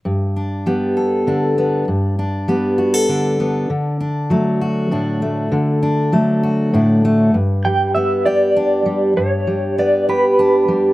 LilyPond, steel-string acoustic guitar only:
\new Staff \with { instrumentName = "Steel-string acoustic guitar" } { \time 6/8 \key g \lydian \tempo 4. = 66 << { r8 d'8 b8 a'8 d'8 b8 | r8 d'8 b8 fis'16 a'16 d'8 b8 | r8 d'8 a8 fis'8 d'8 a8~ | a8 d'8 a8 fis'8 d'8 a8 |
r4 b8 g'8 d'4 | r4 b8 g'8 d'4 | } \\ { g,4 g4 d4 | g,4 g4 d4 | d4 fis4 a,4 | d4 fis4 a,4 |
g,8 g2 g8 | g,8 g2 g8 | } >> }